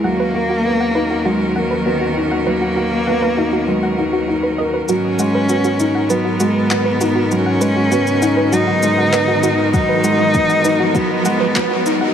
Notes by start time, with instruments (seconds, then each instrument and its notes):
Already playing: string quartet A#4
0.04 string quartet D#2 D#3 C#4 F#4, felt piano F#3, cello A#3, synth arpeggio sound F#5
0.20 synth arpeggio sound B4
0.34 felt piano A#3, synth arpeggio sound F#4
0.50 synth arpeggio sound F#4
0.65 felt piano B3
0.80 synth arpeggio sound F#5
0.95 felt piano D#4, synth arpeggio sound B4
1.10 synth arpeggio sound F#4
1.25 felt piano F#3, cello G#3, synth arpeggio sound F#4
1.56 cello F#3, felt piano A#3, synth arpeggio sound F#5
1.71 synth arpeggio sound B4
1.86 cello D#3, felt piano B3, synth arpeggio sound F#4
2.01 synth arpeggio sound F#4
2.17 felt piano D#4
2.31 synth arpeggio sound F#5
2.46 felt piano F#3, cello A#3, synth arpeggio sound B4
2.61 synth arpeggio sound F#4
2.76 felt piano A#3, synth arpeggio sound F#4
3.07 felt piano B3, synth arpeggio sound F#5
3.22 synth arpeggio sound B4
3.37 felt piano D#4, synth arpeggio sound F#4
3.53 synth arpeggio sound F#4
3.68 felt piano F#3, cello G#3
3.83 synth arpeggio sound F#5
3.98 cello F#3, felt piano D#4, synth arpeggio sound F#4
4.13 synth arpeggio sound F#4
4.28 felt piano D#4, synth arpeggio sound F#4
4.43 synth arpeggio sound B4
4.58 felt piano A#4, synth arpeggio sound D#5
4.74 synth arpeggio sound B4
4.88 string quartet G#2 D#3 B3 F#4 A#4, felt piano F#3, cello C#4, synth arpeggio sound F#4, riser, shaker
5.19 felt piano G#3, synth arpeggio sound F#5, shaker
5.35 synth arpeggio sound B4
5.49 felt piano B3, synth arpeggio sound F#4, shaker
5.64 synth arpeggio sound F#4, shaker
5.80 felt piano D#4, shaker
5.95 synth arpeggio sound F#5
6.10 felt piano F#3, cello B3, synth arpeggio sound B4, shaker
6.25 synth arpeggio sound F#4
6.40 felt piano G#3, synth arpeggio sound F#4, shaker
6.70 felt piano B3, synth arpeggio sound F#5, clap, shaker
6.85 synth arpeggio sound B4
7.01 felt piano D#4, synth arpeggio sound F#4, shaker
7.16 synth arpeggio sound F#4
7.31 felt piano F#3, cello C#4, shaker
7.46 synth arpeggio sound F#5
7.61 felt piano G#3, synth arpeggio sound B4, shaker
7.76 synth arpeggio sound F#4
7.92 felt piano B3, synth arpeggio sound F#4, shaker
8.07 shaker
8.22 felt piano D#4, synth arpeggio sound F#5, shaker
8.37 synth arpeggio sound B4
8.52 felt piano F#3, cello D#4, synth arpeggio sound F#4, shaker
8.67 synth arpeggio sound F#4
8.83 felt piano G#3, shaker
8.98 synth arpeggio sound F#5
9.13 felt piano B3, synth arpeggio sound B4, clap, shaker
9.28 synth arpeggio sound F#4
9.43 felt piano D#4, synth arpeggio sound F#4, shaker
9.73 felt piano F#3, cello D#4, synth arpeggio sound F#5, kick, shaker
9.89 synth arpeggio sound B4
10.04 felt piano G#3, synth arpeggio sound F#4, shaker
10.19 synth arpeggio sound F#4
10.34 felt piano B3, kick, shaker
10.49 synth arpeggio sound F#5, shaker
10.65 felt piano D#4, synth arpeggio sound B4, shaker
10.80 synth arpeggio sound F#4
10.95 felt piano F#3, cello B3, synth arpeggio sound F#4, kick, shaker
11.25 felt piano G#3, synth arpeggio sound F#5, shaker
11.40 synth arpeggio sound B4
11.55 felt piano B3, synth arpeggio sound F#4, kick, clap, shaker
11.71 synth arpeggio sound F#4
11.86 felt piano D#4, shaker
12.01 synth arpeggio sound F#5